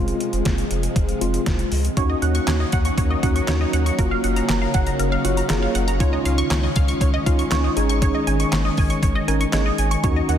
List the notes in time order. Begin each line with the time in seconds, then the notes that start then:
Already playing: F1 C3 F3 G#3 C4 F4
0.08 closed hi-hat
0.20 closed hi-hat
0.33 F1, closed hi-hat
0.45 F1, kick, snare, closed hi-hat
0.58 closed hi-hat
0.71 F1, closed hi-hat
0.83 closed hi-hat
0.96 F1, kick, closed hi-hat
1.09 closed hi-hat
1.21 F1 G#3 C4 F4, closed hi-hat
1.34 closed hi-hat
1.46 F1, kick, snare, closed hi-hat
1.59 closed hi-hat
1.72 C#2, open hi-hat
1.85 closed hi-hat
1.97 D#2 D#3 F#3 A#3 C#4 D#4 F#4 C#5, kick, closed hi-hat
2.10 D#5
2.22 D#2 F#5, closed hi-hat
2.35 C#6, closed hi-hat
2.47 D#2 C#5, snare, clap, closed hi-hat
2.60 D#5
2.72 D#2 F#5, kick, closed hi-hat
2.85 C#6, closed hi-hat
2.98 D#2 C#5, kick, closed hi-hat
3.10 D#5
3.23 D#2 C#4 D#4 F#4 F#5, kick, closed hi-hat
3.36 C#6, closed hi-hat
3.48 D#2 C#4 D#4 F#4 C#5, snare, clap, closed hi-hat
3.61 D#5
3.73 D#2 F#5, closed hi-hat
3.86 C#6, closed hi-hat
3.99 F#1 C#3 A#3 F4 F#4 A#4, kick, closed hi-hat
4.11 F5
4.24 F#1 F#5, closed hi-hat
4.36 A#5, closed hi-hat
4.49 F#1 A#4, snare, clap, closed hi-hat
4.62 F5
4.74 F#1 F#5, kick, closed hi-hat
4.87 A#5, closed hi-hat
4.99 F#1 A#4, closed hi-hat
5.12 F5
5.25 F#1 A#3 F4 F#4 F#5, closed hi-hat
5.37 A#5, closed hi-hat
5.50 F#1 A#3 F4 G#4 A#4, snare, clap, closed hi-hat
5.63 F5
5.75 F#1 F#5, closed hi-hat
5.88 A#5, closed hi-hat
6.00 C#2 D#3 G#3 C#4 D#4 F4 C#5, kick, closed hi-hat
6.13 D#5
6.25 C#2 F5, closed hi-hat
6.38 C#6, closed hi-hat
6.50 C#2 C#5, snare, clap, closed hi-hat
6.63 D#5
6.76 C#2 F5, kick, closed hi-hat
6.88 C#6, closed hi-hat
7.01 C#2 C#5, kick, closed hi-hat
7.14 D#5
7.26 C#2 C#4 D#4 F4 F5, kick, closed hi-hat
7.39 C#6, closed hi-hat
7.51 C#2 C#4 D#4 F4 C#5, snare, clap, closed hi-hat
7.64 D#5
7.77 G#1 C#4 D#4 G#4 G#5, closed hi-hat
7.89 C#6, closed hi-hat
8.02 C#5, kick, closed hi-hat
8.15 D#5
8.27 G#1 G#5, closed hi-hat
8.40 C#6, closed hi-hat
8.52 G#1 C#5, snare, clap, closed hi-hat
8.65 D#5
8.77 G#1 G#5, kick, open hi-hat
8.90 C#6, closed hi-hat
9.03 G#1 C#5, kick, closed hi-hat
9.15 D#5
9.28 G#1 C#4 D#4 A#4 G#5, closed hi-hat
9.41 C#6, closed hi-hat
9.53 G#1 C#4 D#4 G#4 C#5 D#5, snare, clap, closed hi-hat
9.66 D#5
9.78 G#1 G#5, closed hi-hat
9.91 C#6, closed hi-hat
10.04 D#2 F#3 A#3 C#4 D#4 F#4 C#5, kick, closed hi-hat
10.16 D#5
10.29 D#2 F#5, closed hi-hat